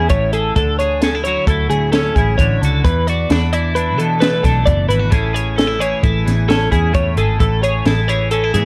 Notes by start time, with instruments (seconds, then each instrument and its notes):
Already playing: clean electric guitar E3 C#4 E4 G#4
0.10 picked electric bass A1, clean electric guitar A2 C#5, kick, closed hi-hat
0.33 clean electric guitar G#4 A4, closed hi-hat
0.56 picked electric bass D2, clean electric guitar D3 A4, kick, closed hi-hat
0.79 clean electric guitar G#4 C#5, closed hi-hat
1.01 clean electric guitar C#4 A4, snare, closed hi-hat
1.15 clean electric guitar E4
1.24 clean electric guitar F#3 C#5, closed hi-hat
1.28 clean electric guitar F#4
1.47 picked electric bass D2, clean electric guitar E4 A4, kick, closed hi-hat
1.70 picked electric bass D2, clean electric guitar A2 G#4, closed hi-hat
1.92 clean electric guitar C#4 A4, snare, closed hi-hat
2.15 picked electric bass A1, clean electric guitar E4 G#4, kick, closed hi-hat
2.38 picked electric bass A1, clean electric guitar D3 C#5, kick, closed hi-hat
2.62 picked electric bass C#2, clean electric guitar F#4 A4, closed hi-hat
2.84 picked electric bass E2, clean electric guitar E2 B4, kick, closed hi-hat
3.07 clean electric guitar F#4 D5, closed hi-hat
3.30 picked electric bass E2, clean electric guitar D4 B4, snare, closed hi-hat
3.53 clean electric guitar E3 E4 D5, closed hi-hat
3.75 clean electric guitar D4 B4, closed hi-hat
3.98 clean electric guitar B2 A4, picked electric bass E3, closed hi-hat
4.20 clean electric guitar A3 B4, snare, closed hi-hat
4.43 picked electric bass B1, clean electric guitar D4 A4, kick, snare, closed hi-hat
4.66 picked electric bass F#1, clean electric guitar E2 D5, kick, closed hi-hat
4.88 picked electric bass G#1, clean electric guitar E4 B4, closed hi-hat
4.99 clean electric guitar F#4
5.10 picked electric bass A1, clean electric guitar A2 E3 C#4 E4 G#4 A4, kick, closed hi-hat
5.33 clean electric guitar G#4 C#5, closed hi-hat
5.56 clean electric guitar C#4 A4, snare, closed hi-hat
5.67 clean electric guitar E4
5.79 clean electric guitar E3 G#4 C#5, closed hi-hat
6.03 picked electric bass A1, clean electric guitar E4 A4, kick, closed hi-hat
6.26 picked electric bass A1, clean electric guitar E2 G#4, snare, closed hi-hat
6.48 clean electric guitar C#4 A4, snare, closed hi-hat
6.71 picked electric bass E2, clean electric guitar E4 G#4, kick, closed hi-hat
6.93 picked electric bass E2, clean electric guitar A2 C#5, kick, closed hi-hat
7.16 picked electric bass G#1, clean electric guitar G#4 A4, closed hi-hat
7.39 picked electric bass A1, clean electric guitar A2 A4, kick, closed hi-hat
7.63 clean electric guitar G#4 C#5, closed hi-hat
7.86 picked electric bass A1, clean electric guitar E4 A4, snare, closed hi-hat
8.08 clean electric guitar E3 G#4 C#5, closed hi-hat
8.31 clean electric guitar C#4 A4, closed hi-hat
8.44 clean electric guitar E4
8.54 clean electric guitar E2 G#4, picked electric bass A2, closed hi-hat